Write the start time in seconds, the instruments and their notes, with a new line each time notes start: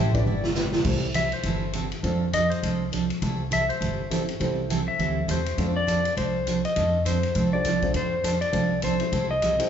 Already playing: upright bass A1, pedal steel guitar E5
0.14 upright piano D4 E4 G4 B4 D5, pedal steel guitar D5, kick, ride
0.26 upright bass G1, steel-string acoustic guitar G3 B3 E4 G4
0.44 snare
0.55 steel-string acoustic guitar G3 B3 E4 G4, snare, hi-hat pedal
0.73 snare
0.85 upright bass C2, steel-string acoustic guitar C3 E3 G3 C4 E4 A4, upright piano C4 E4 G4 A4 C5, kick, crash
1.14 steel-string acoustic guitar C3 E3 G3 C4 E4 A4, electric slide guitar E5, kick, hi-hat pedal, ride
1.32 electric slide guitar C5, ride
1.43 upright bass G1, steel-string acoustic guitar C3 E3 G3 C4 E4 A4, kick, ride
1.73 steel-string acoustic guitar C3 E3 G3 C4 E4 A4, kick, hi-hat pedal, ride
1.92 ride
2.03 upright bass F2, steel-string acoustic guitar F3 C4 D4 A4, upright piano C4 D4 F4 A4 C5, kick, ride
2.33 steel-string acoustic guitar F3 C4 D4 A4, electric slide guitar D#5, kick, hi-hat pedal, ride
2.50 electric slide guitar C5, ride
2.63 upright bass C2, steel-string acoustic guitar F3 C4 D4 A4, kick, ride
2.92 steel-string acoustic guitar F3 C4 D4 A4, kick, hi-hat pedal, ride
3.10 ride
3.22 upright bass C2, steel-string acoustic guitar C3 E3 G3 C4 E4 A4, kick, ride
3.51 steel-string acoustic guitar C3 E3 G3 C4 E4 A4, electric slide guitar E5, kick, hi-hat pedal, ride
3.69 electric slide guitar C5, ride
3.80 upright bass G1, steel-string acoustic guitar C3 E3 G3 C4 E4 A4, kick, ride
4.11 steel-string acoustic guitar C3 E3 G3 C4 E4 A4, upright piano C4 E4 G4 A4 C5, kick, hi-hat pedal, ride
4.29 ride
4.40 upright bass C2, steel-string acoustic guitar C3 E3 G3 C4 E4 A4, upright piano C4 E4 G4 A4 C5, kick, ride
4.70 steel-string acoustic guitar C3 E3 G3 C4 E4 A4, kick, hi-hat pedal, ride
4.88 electric slide guitar E5
4.99 upright bass D2, steel-string acoustic guitar C3 E3 G3 C4 E4 A4, kick, ride
5.28 upright bass E2, steel-string acoustic guitar C3 E3 G3 C4 E4 A4, electric slide guitar C5, kick, hi-hat pedal, ride
5.46 ride
5.57 upright bass F2, steel-string acoustic guitar F3 C4 D4 A4, upright piano C4 D4 F4 A4 C5, kick, ride
5.76 electric slide guitar D5
5.87 steel-string acoustic guitar F3 C4 D4 A4, kick, hi-hat pedal, ride
6.05 ride
6.17 upright bass C2, steel-string acoustic guitar F3 C4 D4 A4, electric slide guitar C5, kick, ride
6.47 steel-string acoustic guitar F3 C4 D4 A4, kick, hi-hat pedal, ride
6.65 electric slide guitar D#5, ride
6.76 upright bass F2, steel-string acoustic guitar F3 C4 D4 A4, kick, ride
7.05 steel-string acoustic guitar F3 C4 D4 A4, electric slide guitar C5, kick, hi-hat pedal, ride
7.23 ride
7.35 upright bass C2, steel-string acoustic guitar F3 C4 D4 A4, kick, ride
7.53 upright piano C4 D4 F4 A4 C5, electric slide guitar D5
7.65 steel-string acoustic guitar F3 C4 D4 A4, kick, snare, hi-hat pedal, ride
7.82 upright piano C4 D4 F4 A4 C5, kick, ride
7.94 upright bass F2, steel-string acoustic guitar F3 C4 D4 A4, electric slide guitar C5, kick, ride
8.24 steel-string acoustic guitar F3 C4 D4 A4, kick, hi-hat pedal, ride
8.41 electric slide guitar D5, ride
8.52 upright bass C2, steel-string acoustic guitar F3 C4 D4 A4, upright piano C4 D4 F4 A4 C5, kick, ride
8.82 steel-string acoustic guitar F3 C4 D4 A4, electric slide guitar C5, kick, hi-hat pedal, ride
9.00 upright piano C4 E4 G4 A4 C5, ride
9.12 upright bass C2, steel-string acoustic guitar C3 E3 G3 C4 E4 A4, kick, ride
9.31 electric slide guitar D#5
9.42 steel-string acoustic guitar C3 E3 G3 C4 E4 A4, kick, hi-hat pedal, ride
9.59 upright piano C4 E4 G4 A4 C5, ride